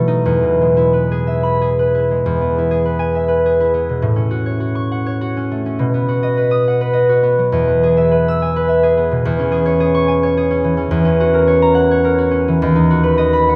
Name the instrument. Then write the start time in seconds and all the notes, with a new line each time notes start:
harp
Already playing: B2 F#3 A3
0.08 D#4
0.26 E2
0.43 B2
0.61 G#3
0.77 E4
0.93 B4
1.11 G#4
1.27 E5
1.43 B5
1.61 G#4
1.79 B4
1.95 E4
2.11 G#3
2.26 E2
2.41 B3
2.58 E4
2.71 G#4
2.85 B4
2.99 G#5
3.15 E5
3.28 B4
3.46 G#4
3.60 E4
3.74 B3
3.89 B2
4.02 A2
4.16 C#4
4.31 F#4
4.46 C#5
4.60 F#4
4.75 C#6
4.92 F#5
5.06 C#5
5.21 F#4
5.37 C#4
5.51 A3
5.66 C#4
5.79 B2
5.94 B3
6.09 F#4
6.23 D#5
6.37 B4
6.51 D#6
6.68 F#5
6.81 B4
6.93 D#5
7.09 F#4
7.23 B3
7.38 F#3
7.52 E2
7.68 B3
7.83 G#4
7.97 E5
8.11 B4
8.28 E6
8.42 G#5
8.56 B4
8.68 E5
8.83 G#4
8.97 B3
9.11 B2
9.25 E2
9.39 C#4
9.52 G#4
9.66 C#5
9.80 G#4
9.95 C#6
10.08 G#5
10.23 C#5
10.37 G#4
10.51 C#4
10.64 E3
10.77 C#4
10.91 E2
11.05 C#4
11.20 F#4
11.34 A#4
11.47 C#5
11.62 A#5
11.75 F#5
11.91 C#5
12.05 A#4
12.18 F#4
12.31 C#4
12.48 E3
12.62 D#2
12.76 D#4
12.90 F#4
13.03 B4
13.18 D#5
13.33 B5
13.49 F#5